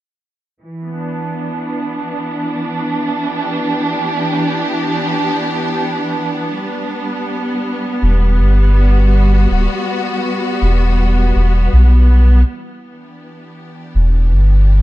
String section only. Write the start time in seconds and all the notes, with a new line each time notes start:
0.61 E3
0.86 B3
0.97 D4
3.28 G4
6.54 G3
8.71 F#4
12.47 E3
12.88 D4 G4